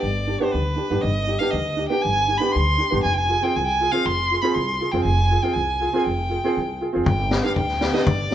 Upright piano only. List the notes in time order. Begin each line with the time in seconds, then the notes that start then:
0.27 D4 G4
0.40 B3 D4 G4
0.76 D4 G4
0.90 B3 D4 G4
1.27 D4 G4
1.40 B3 D4 G4
1.76 D4 G4
1.90 B3 D4 G4
2.28 D4 G4
2.40 B3 D4 G4
2.78 D4 G4
2.90 B3 D4 G4
3.29 F4 G#4
3.42 C4 F4 G#4
3.81 F4 G#4
3.92 C4 F4 G#4
4.31 F4 G#4
4.42 C4 F4 G#4
4.80 F4 G#4
4.93 C4 F4 G#4
5.31 F4 G#4
5.43 C4 F4 G#4
5.81 F4 G#4
5.93 C4 F4 G#4
6.29 F4 G#4
6.44 C4 F4 G#4
6.81 F4 G#4
6.93 C4 F4 G#4
7.31 D4 G4
7.43 B3 D4 G4
7.80 D4 G4
7.93 B3 D4 G4
8.30 D4